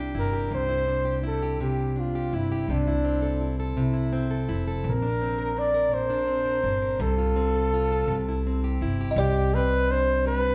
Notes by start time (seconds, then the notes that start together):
Already playing: C2 C3 D4 E4 G4
0.15 G1 E4
0.19 A#4
0.33 G4
0.51 C2 C3 C5
0.69 E4
0.88 D4
1.05 G4
1.23 E4 A4
1.43 G4
1.60 C3 G4
1.96 D4 F4
2.15 G4
2.33 G1 E4
2.52 G4
2.68 C2 C3 D4
2.87 E4
3.04 C4
3.22 A4
3.41 E4
3.60 A4
3.77 C3 E4
3.94 E4
4.13 C4
4.31 A4
4.49 F1 E4
4.68 A4
4.84 A#1 A#2
4.89 A#4
5.02 D4
5.21 C4
5.38 A#4
5.57 D4 D5
5.74 A#4
5.91 A#2 C5
6.10 D4
6.28 C4
6.46 A#4
6.64 G1 D4
6.82 A#4
7.00 C2 C3 A4
7.18 F4
7.36 C4
7.55 A4
7.74 F4
7.92 A4
8.08 C2 C3
8.29 E4
8.47 C4
8.64 G4
8.81 G1 E4
9.01 G4
9.11 D#5
9.16 C2 C3 G4 D5
9.54 C4 B4
9.90 D4 C5
10.25 G3 B4